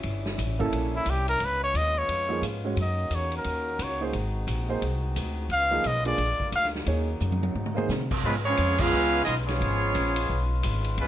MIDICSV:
0, 0, Header, 1, 9, 480
1, 0, Start_track
1, 0, Tempo, 341491
1, 67, Time_signature, 4, 2, 24, 8
1, 15567, End_track
2, 0, Start_track
2, 0, Title_t, "Trumpet"
2, 0, Program_c, 0, 56
2, 1349, Note_on_c, 0, 64, 86
2, 1547, Note_on_c, 0, 67, 84
2, 1568, Note_off_c, 0, 64, 0
2, 1804, Note_off_c, 0, 67, 0
2, 1812, Note_on_c, 0, 70, 94
2, 2039, Note_on_c, 0, 71, 82
2, 2060, Note_off_c, 0, 70, 0
2, 2292, Note_off_c, 0, 71, 0
2, 2300, Note_on_c, 0, 73, 104
2, 2488, Note_on_c, 0, 75, 95
2, 2509, Note_off_c, 0, 73, 0
2, 2785, Note_on_c, 0, 73, 94
2, 2807, Note_off_c, 0, 75, 0
2, 3434, Note_off_c, 0, 73, 0
2, 3953, Note_on_c, 0, 75, 76
2, 4425, Note_on_c, 0, 73, 85
2, 4446, Note_off_c, 0, 75, 0
2, 4705, Note_off_c, 0, 73, 0
2, 4741, Note_on_c, 0, 70, 70
2, 5392, Note_on_c, 0, 73, 81
2, 5413, Note_off_c, 0, 70, 0
2, 5669, Note_off_c, 0, 73, 0
2, 7764, Note_on_c, 0, 77, 100
2, 8251, Note_on_c, 0, 75, 93
2, 8272, Note_off_c, 0, 77, 0
2, 8518, Note_off_c, 0, 75, 0
2, 8527, Note_on_c, 0, 74, 89
2, 9137, Note_off_c, 0, 74, 0
2, 9218, Note_on_c, 0, 77, 93
2, 9387, Note_off_c, 0, 77, 0
2, 15567, End_track
3, 0, Start_track
3, 0, Title_t, "Trumpet section"
3, 0, Program_c, 1, 61
3, 11591, Note_on_c, 1, 65, 83
3, 11592, Note_on_c, 1, 71, 88
3, 11596, Note_on_c, 1, 61, 78
3, 11598, Note_on_c, 1, 56, 80
3, 11724, Note_off_c, 1, 65, 0
3, 11725, Note_off_c, 1, 71, 0
3, 11729, Note_off_c, 1, 61, 0
3, 11730, Note_off_c, 1, 56, 0
3, 11874, Note_on_c, 1, 65, 89
3, 11875, Note_on_c, 1, 59, 85
3, 11878, Note_on_c, 1, 73, 98
3, 11880, Note_on_c, 1, 68, 86
3, 12325, Note_off_c, 1, 59, 0
3, 12325, Note_off_c, 1, 65, 0
3, 12327, Note_off_c, 1, 73, 0
3, 12328, Note_off_c, 1, 68, 0
3, 12356, Note_on_c, 1, 68, 108
3, 12362, Note_on_c, 1, 77, 127
3, 12364, Note_on_c, 1, 71, 114
3, 12369, Note_on_c, 1, 61, 113
3, 12993, Note_off_c, 1, 68, 0
3, 13004, Note_on_c, 1, 75, 106
3, 13010, Note_on_c, 1, 68, 78
3, 13016, Note_on_c, 1, 65, 88
3, 13017, Note_on_c, 1, 59, 86
3, 13022, Note_off_c, 1, 77, 0
3, 13023, Note_off_c, 1, 71, 0
3, 13025, Note_off_c, 1, 61, 0
3, 13143, Note_off_c, 1, 75, 0
3, 13148, Note_off_c, 1, 68, 0
3, 13153, Note_off_c, 1, 65, 0
3, 13154, Note_off_c, 1, 59, 0
3, 13300, Note_on_c, 1, 65, 89
3, 13307, Note_on_c, 1, 59, 77
3, 13311, Note_on_c, 1, 73, 90
3, 13313, Note_on_c, 1, 68, 93
3, 14697, Note_off_c, 1, 65, 0
3, 14700, Note_off_c, 1, 59, 0
3, 14702, Note_off_c, 1, 73, 0
3, 14703, Note_off_c, 1, 68, 0
3, 15459, Note_on_c, 1, 65, 78
3, 15460, Note_on_c, 1, 56, 80
3, 15461, Note_on_c, 1, 61, 76
3, 15461, Note_on_c, 1, 71, 94
3, 15567, Note_off_c, 1, 56, 0
3, 15567, Note_off_c, 1, 61, 0
3, 15567, Note_off_c, 1, 65, 0
3, 15567, Note_off_c, 1, 71, 0
3, 15567, End_track
4, 0, Start_track
4, 0, Title_t, "Grand piano"
4, 0, Program_c, 2, 0
4, 831, Note_on_c, 2, 58, 78
4, 837, Note_on_c, 2, 61, 69
4, 845, Note_on_c, 2, 64, 70
4, 852, Note_on_c, 2, 69, 87
4, 1462, Note_off_c, 2, 58, 0
4, 1465, Note_off_c, 2, 61, 0
4, 1469, Note_off_c, 2, 64, 0
4, 1473, Note_off_c, 2, 69, 0
4, 3215, Note_on_c, 2, 53, 62
4, 3229, Note_on_c, 2, 58, 61
4, 3230, Note_on_c, 2, 63, 58
4, 3236, Note_on_c, 2, 68, 63
4, 3391, Note_off_c, 2, 53, 0
4, 3398, Note_off_c, 2, 58, 0
4, 3399, Note_off_c, 2, 63, 0
4, 3402, Note_off_c, 2, 68, 0
4, 3717, Note_on_c, 2, 61, 54
4, 3718, Note_on_c, 2, 56, 60
4, 3724, Note_on_c, 2, 66, 49
4, 3740, Note_on_c, 2, 73, 58
4, 3882, Note_off_c, 2, 61, 0
4, 3883, Note_off_c, 2, 56, 0
4, 3886, Note_off_c, 2, 66, 0
4, 3893, Note_off_c, 2, 73, 0
4, 5631, Note_on_c, 2, 58, 65
4, 5633, Note_on_c, 2, 63, 56
4, 5644, Note_on_c, 2, 68, 59
4, 5649, Note_on_c, 2, 72, 66
4, 5799, Note_off_c, 2, 58, 0
4, 5799, Note_off_c, 2, 63, 0
4, 5805, Note_off_c, 2, 68, 0
4, 5807, Note_off_c, 2, 72, 0
4, 6587, Note_on_c, 2, 58, 69
4, 6598, Note_on_c, 2, 63, 61
4, 6602, Note_on_c, 2, 68, 64
4, 6607, Note_on_c, 2, 72, 77
4, 6756, Note_off_c, 2, 58, 0
4, 6762, Note_off_c, 2, 63, 0
4, 6763, Note_off_c, 2, 68, 0
4, 6766, Note_off_c, 2, 72, 0
4, 8028, Note_on_c, 2, 53, 74
4, 8035, Note_on_c, 2, 58, 69
4, 8039, Note_on_c, 2, 63, 64
4, 8048, Note_on_c, 2, 68, 73
4, 8196, Note_off_c, 2, 53, 0
4, 8200, Note_off_c, 2, 58, 0
4, 8202, Note_off_c, 2, 63, 0
4, 8206, Note_off_c, 2, 68, 0
4, 8507, Note_on_c, 2, 58, 67
4, 8510, Note_on_c, 2, 62, 59
4, 8520, Note_on_c, 2, 65, 61
4, 8520, Note_on_c, 2, 68, 71
4, 8676, Note_off_c, 2, 58, 0
4, 8677, Note_off_c, 2, 62, 0
4, 8682, Note_off_c, 2, 65, 0
4, 8682, Note_off_c, 2, 68, 0
4, 9642, Note_on_c, 2, 58, 64
4, 9652, Note_on_c, 2, 63, 52
4, 9657, Note_on_c, 2, 68, 62
4, 9667, Note_on_c, 2, 73, 77
4, 9923, Note_off_c, 2, 58, 0
4, 9928, Note_off_c, 2, 63, 0
4, 9930, Note_off_c, 2, 68, 0
4, 9935, Note_off_c, 2, 73, 0
4, 10888, Note_on_c, 2, 58, 77
4, 10904, Note_on_c, 2, 63, 71
4, 10913, Note_on_c, 2, 68, 70
4, 10916, Note_on_c, 2, 72, 80
4, 11066, Note_off_c, 2, 58, 0
4, 11074, Note_off_c, 2, 63, 0
4, 11079, Note_off_c, 2, 68, 0
4, 11080, Note_off_c, 2, 72, 0
4, 15567, End_track
5, 0, Start_track
5, 0, Title_t, "Trombone section"
5, 0, Program_c, 3, 61
5, 0, Note_on_c, 3, 61, 70
5, 0, Note_on_c, 3, 64, 79
5, 49, Note_on_c, 3, 55, 70
5, 1925, Note_off_c, 3, 64, 0
5, 1957, Note_off_c, 3, 55, 0
5, 1959, Note_on_c, 3, 65, 80
5, 1965, Note_on_c, 3, 56, 67
5, 1970, Note_on_c, 3, 59, 65
5, 3834, Note_off_c, 3, 61, 0
5, 3872, Note_off_c, 3, 65, 0
5, 3875, Note_off_c, 3, 56, 0
5, 3877, Note_off_c, 3, 59, 0
5, 3877, Note_on_c, 3, 61, 71
5, 3880, Note_on_c, 3, 58, 61
5, 3887, Note_on_c, 3, 63, 76
5, 3891, Note_on_c, 3, 66, 89
5, 5790, Note_off_c, 3, 61, 0
5, 5791, Note_off_c, 3, 58, 0
5, 5815, Note_on_c, 3, 60, 69
5, 5833, Note_on_c, 3, 56, 64
5, 7695, Note_off_c, 3, 63, 0
5, 7697, Note_off_c, 3, 66, 0
5, 7719, Note_off_c, 3, 60, 0
5, 7728, Note_off_c, 3, 56, 0
5, 7774, Note_on_c, 3, 65, 80
5, 7776, Note_on_c, 3, 49, 73
5, 7776, Note_on_c, 3, 56, 63
5, 7781, Note_on_c, 3, 59, 62
5, 8703, Note_off_c, 3, 65, 0
5, 8709, Note_off_c, 3, 49, 0
5, 8709, Note_off_c, 3, 56, 0
5, 8712, Note_off_c, 3, 59, 0
5, 8720, Note_on_c, 3, 65, 78
5, 8724, Note_on_c, 3, 56, 58
5, 8724, Note_on_c, 3, 58, 65
5, 8725, Note_on_c, 3, 50, 65
5, 9661, Note_off_c, 3, 65, 0
5, 9663, Note_off_c, 3, 56, 0
5, 9663, Note_off_c, 3, 58, 0
5, 9664, Note_off_c, 3, 50, 0
5, 9679, Note_on_c, 3, 58, 69
5, 9685, Note_on_c, 3, 63, 78
5, 9697, Note_on_c, 3, 49, 75
5, 9698, Note_on_c, 3, 54, 74
5, 10621, Note_off_c, 3, 58, 0
5, 10630, Note_off_c, 3, 49, 0
5, 10650, Note_on_c, 3, 48, 66
5, 10656, Note_on_c, 3, 56, 61
5, 11369, Note_off_c, 3, 48, 0
5, 11369, Note_off_c, 3, 54, 0
5, 11369, Note_off_c, 3, 56, 0
5, 11369, Note_off_c, 3, 63, 0
5, 11608, Note_on_c, 3, 49, 74
5, 11617, Note_on_c, 3, 56, 66
5, 11620, Note_on_c, 3, 71, 76
5, 11624, Note_on_c, 3, 65, 86
5, 15567, Note_off_c, 3, 49, 0
5, 15567, Note_off_c, 3, 56, 0
5, 15567, Note_off_c, 3, 65, 0
5, 15567, Note_off_c, 3, 71, 0
5, 15567, End_track
6, 0, Start_track
6, 0, Title_t, "Trombone section"
6, 0, Program_c, 4, 61
6, 11592, Note_on_c, 4, 53, 74
6, 11594, Note_on_c, 4, 56, 85
6, 11601, Note_on_c, 4, 59, 77
6, 11726, Note_off_c, 4, 53, 0
6, 11727, Note_off_c, 4, 56, 0
6, 11732, Note_off_c, 4, 59, 0
6, 11892, Note_on_c, 4, 56, 88
6, 11894, Note_on_c, 4, 61, 90
6, 11896, Note_on_c, 4, 53, 87
6, 12325, Note_off_c, 4, 56, 0
6, 12336, Note_off_c, 4, 61, 0
6, 12337, Note_off_c, 4, 53, 0
6, 12339, Note_on_c, 4, 59, 114
6, 12342, Note_on_c, 4, 56, 105
6, 12347, Note_on_c, 4, 65, 111
6, 13005, Note_on_c, 4, 63, 82
6, 13010, Note_off_c, 4, 59, 0
6, 13012, Note_off_c, 4, 56, 0
6, 13014, Note_off_c, 4, 65, 0
6, 13145, Note_off_c, 4, 63, 0
6, 13294, Note_on_c, 4, 56, 79
6, 13298, Note_on_c, 4, 53, 81
6, 13303, Note_on_c, 4, 61, 86
6, 14694, Note_off_c, 4, 56, 0
6, 14696, Note_off_c, 4, 53, 0
6, 14698, Note_off_c, 4, 61, 0
6, 15439, Note_on_c, 4, 53, 76
6, 15443, Note_on_c, 4, 59, 74
6, 15446, Note_on_c, 4, 56, 78
6, 15567, Note_off_c, 4, 53, 0
6, 15567, Note_off_c, 4, 56, 0
6, 15567, Note_off_c, 4, 59, 0
6, 15567, End_track
7, 0, Start_track
7, 0, Title_t, "Upright bass"
7, 0, Program_c, 5, 32
7, 56, Note_on_c, 5, 31, 89
7, 527, Note_off_c, 5, 31, 0
7, 536, Note_on_c, 5, 33, 92
7, 1006, Note_off_c, 5, 33, 0
7, 1018, Note_on_c, 5, 34, 78
7, 1478, Note_off_c, 5, 34, 0
7, 1487, Note_on_c, 5, 36, 86
7, 1961, Note_off_c, 5, 36, 0
7, 1976, Note_on_c, 5, 37, 82
7, 2437, Note_off_c, 5, 37, 0
7, 2445, Note_on_c, 5, 39, 85
7, 2920, Note_off_c, 5, 39, 0
7, 2929, Note_on_c, 5, 41, 79
7, 3392, Note_off_c, 5, 41, 0
7, 3401, Note_on_c, 5, 44, 76
7, 3877, Note_off_c, 5, 44, 0
7, 3884, Note_on_c, 5, 42, 86
7, 4353, Note_off_c, 5, 42, 0
7, 4361, Note_on_c, 5, 40, 86
7, 4837, Note_off_c, 5, 40, 0
7, 4849, Note_on_c, 5, 39, 84
7, 5321, Note_off_c, 5, 39, 0
7, 5328, Note_on_c, 5, 37, 89
7, 5797, Note_off_c, 5, 37, 0
7, 5805, Note_on_c, 5, 32, 90
7, 6275, Note_off_c, 5, 32, 0
7, 6284, Note_on_c, 5, 34, 91
7, 6758, Note_off_c, 5, 34, 0
7, 6771, Note_on_c, 5, 36, 87
7, 7242, Note_off_c, 5, 36, 0
7, 7257, Note_on_c, 5, 38, 83
7, 7710, Note_off_c, 5, 38, 0
7, 7719, Note_on_c, 5, 37, 80
7, 8195, Note_off_c, 5, 37, 0
7, 8210, Note_on_c, 5, 35, 89
7, 8677, Note_off_c, 5, 35, 0
7, 8686, Note_on_c, 5, 34, 85
7, 8973, Note_off_c, 5, 34, 0
7, 9166, Note_on_c, 5, 38, 87
7, 9639, Note_off_c, 5, 38, 0
7, 9648, Note_on_c, 5, 39, 98
7, 10120, Note_off_c, 5, 39, 0
7, 10127, Note_on_c, 5, 42, 96
7, 10600, Note_off_c, 5, 42, 0
7, 10612, Note_on_c, 5, 44, 77
7, 11078, Note_off_c, 5, 44, 0
7, 11087, Note_on_c, 5, 48, 94
7, 11560, Note_off_c, 5, 48, 0
7, 11573, Note_on_c, 5, 44, 84
7, 12043, Note_off_c, 5, 44, 0
7, 12063, Note_on_c, 5, 41, 98
7, 12528, Note_off_c, 5, 41, 0
7, 12549, Note_on_c, 5, 37, 90
7, 13012, Note_off_c, 5, 37, 0
7, 13024, Note_on_c, 5, 35, 90
7, 13489, Note_off_c, 5, 35, 0
7, 13501, Note_on_c, 5, 32, 90
7, 13968, Note_off_c, 5, 32, 0
7, 13985, Note_on_c, 5, 34, 99
7, 14450, Note_off_c, 5, 34, 0
7, 14471, Note_on_c, 5, 35, 89
7, 14933, Note_off_c, 5, 35, 0
7, 14957, Note_on_c, 5, 32, 92
7, 15417, Note_off_c, 5, 32, 0
7, 15429, Note_on_c, 5, 37, 97
7, 15567, Note_off_c, 5, 37, 0
7, 15567, End_track
8, 0, Start_track
8, 0, Title_t, "Muted upright bass strokes"
8, 8991, Note_on_c, 9, 29, 45
8, 9132, Note_off_c, 9, 29, 0
8, 15567, End_track
9, 0, Start_track
9, 0, Title_t, "Drums"
9, 46, Note_on_c, 9, 51, 65
9, 187, Note_off_c, 9, 51, 0
9, 361, Note_on_c, 9, 38, 58
9, 502, Note_off_c, 9, 38, 0
9, 543, Note_on_c, 9, 44, 55
9, 543, Note_on_c, 9, 51, 71
9, 684, Note_off_c, 9, 44, 0
9, 684, Note_off_c, 9, 51, 0
9, 846, Note_on_c, 9, 36, 64
9, 986, Note_off_c, 9, 36, 0
9, 1020, Note_on_c, 9, 51, 69
9, 1160, Note_off_c, 9, 51, 0
9, 1486, Note_on_c, 9, 44, 60
9, 1486, Note_on_c, 9, 51, 71
9, 1627, Note_off_c, 9, 44, 0
9, 1627, Note_off_c, 9, 51, 0
9, 1798, Note_on_c, 9, 51, 50
9, 1939, Note_off_c, 9, 51, 0
9, 1969, Note_on_c, 9, 51, 57
9, 2110, Note_off_c, 9, 51, 0
9, 2455, Note_on_c, 9, 44, 54
9, 2455, Note_on_c, 9, 51, 65
9, 2595, Note_off_c, 9, 44, 0
9, 2595, Note_off_c, 9, 51, 0
9, 2935, Note_on_c, 9, 51, 63
9, 3075, Note_off_c, 9, 51, 0
9, 3415, Note_on_c, 9, 44, 74
9, 3415, Note_on_c, 9, 51, 70
9, 3556, Note_off_c, 9, 44, 0
9, 3556, Note_off_c, 9, 51, 0
9, 3893, Note_on_c, 9, 51, 62
9, 4034, Note_off_c, 9, 51, 0
9, 4367, Note_on_c, 9, 44, 51
9, 4367, Note_on_c, 9, 51, 65
9, 4508, Note_off_c, 9, 44, 0
9, 4508, Note_off_c, 9, 51, 0
9, 4662, Note_on_c, 9, 51, 52
9, 4802, Note_off_c, 9, 51, 0
9, 4840, Note_on_c, 9, 51, 61
9, 4981, Note_off_c, 9, 51, 0
9, 5329, Note_on_c, 9, 44, 61
9, 5329, Note_on_c, 9, 51, 80
9, 5470, Note_off_c, 9, 44, 0
9, 5470, Note_off_c, 9, 51, 0
9, 5808, Note_on_c, 9, 51, 53
9, 5949, Note_off_c, 9, 51, 0
9, 6290, Note_on_c, 9, 44, 60
9, 6290, Note_on_c, 9, 51, 68
9, 6431, Note_off_c, 9, 44, 0
9, 6431, Note_off_c, 9, 51, 0
9, 6775, Note_on_c, 9, 51, 63
9, 6916, Note_off_c, 9, 51, 0
9, 7252, Note_on_c, 9, 44, 73
9, 7252, Note_on_c, 9, 51, 77
9, 7393, Note_off_c, 9, 44, 0
9, 7393, Note_off_c, 9, 51, 0
9, 7727, Note_on_c, 9, 51, 64
9, 7868, Note_off_c, 9, 51, 0
9, 8208, Note_on_c, 9, 44, 54
9, 8208, Note_on_c, 9, 51, 65
9, 8349, Note_off_c, 9, 44, 0
9, 8349, Note_off_c, 9, 51, 0
9, 8504, Note_on_c, 9, 51, 54
9, 8644, Note_off_c, 9, 51, 0
9, 8687, Note_on_c, 9, 51, 69
9, 8828, Note_off_c, 9, 51, 0
9, 8993, Note_on_c, 9, 36, 52
9, 9134, Note_off_c, 9, 36, 0
9, 9167, Note_on_c, 9, 44, 61
9, 9167, Note_on_c, 9, 51, 78
9, 9308, Note_off_c, 9, 44, 0
9, 9308, Note_off_c, 9, 51, 0
9, 9344, Note_on_c, 9, 38, 29
9, 9484, Note_off_c, 9, 38, 0
9, 9492, Note_on_c, 9, 38, 46
9, 9632, Note_off_c, 9, 38, 0
9, 9648, Note_on_c, 9, 51, 64
9, 9789, Note_off_c, 9, 51, 0
9, 10124, Note_on_c, 9, 44, 60
9, 10131, Note_on_c, 9, 47, 52
9, 10264, Note_off_c, 9, 44, 0
9, 10271, Note_off_c, 9, 47, 0
9, 10290, Note_on_c, 9, 48, 65
9, 10431, Note_off_c, 9, 48, 0
9, 10441, Note_on_c, 9, 48, 76
9, 10582, Note_off_c, 9, 48, 0
9, 10616, Note_on_c, 9, 47, 73
9, 10757, Note_off_c, 9, 47, 0
9, 10764, Note_on_c, 9, 47, 80
9, 10904, Note_off_c, 9, 47, 0
9, 10932, Note_on_c, 9, 47, 102
9, 11073, Note_off_c, 9, 47, 0
9, 11092, Note_on_c, 9, 44, 54
9, 11099, Note_on_c, 9, 38, 63
9, 11233, Note_off_c, 9, 44, 0
9, 11240, Note_off_c, 9, 38, 0
9, 11399, Note_on_c, 9, 36, 82
9, 11401, Note_on_c, 9, 49, 85
9, 11540, Note_off_c, 9, 36, 0
9, 11541, Note_off_c, 9, 49, 0
9, 12051, Note_on_c, 9, 44, 51
9, 12051, Note_on_c, 9, 51, 79
9, 12192, Note_off_c, 9, 44, 0
9, 12192, Note_off_c, 9, 51, 0
9, 12347, Note_on_c, 9, 49, 90
9, 12360, Note_on_c, 9, 36, 96
9, 12488, Note_off_c, 9, 49, 0
9, 12501, Note_off_c, 9, 36, 0
9, 13014, Note_on_c, 9, 44, 67
9, 13014, Note_on_c, 9, 51, 79
9, 13155, Note_off_c, 9, 44, 0
9, 13155, Note_off_c, 9, 51, 0
9, 13332, Note_on_c, 9, 51, 49
9, 13339, Note_on_c, 9, 38, 45
9, 13472, Note_off_c, 9, 51, 0
9, 13479, Note_off_c, 9, 38, 0
9, 13517, Note_on_c, 9, 51, 64
9, 13657, Note_off_c, 9, 51, 0
9, 13982, Note_on_c, 9, 44, 56
9, 13982, Note_on_c, 9, 51, 74
9, 14123, Note_off_c, 9, 44, 0
9, 14123, Note_off_c, 9, 51, 0
9, 14281, Note_on_c, 9, 51, 84
9, 14422, Note_off_c, 9, 51, 0
9, 14944, Note_on_c, 9, 44, 65
9, 14944, Note_on_c, 9, 51, 87
9, 15084, Note_off_c, 9, 44, 0
9, 15084, Note_off_c, 9, 51, 0
9, 15244, Note_on_c, 9, 51, 53
9, 15385, Note_off_c, 9, 51, 0
9, 15428, Note_on_c, 9, 51, 68
9, 15567, Note_off_c, 9, 51, 0
9, 15567, End_track
0, 0, End_of_file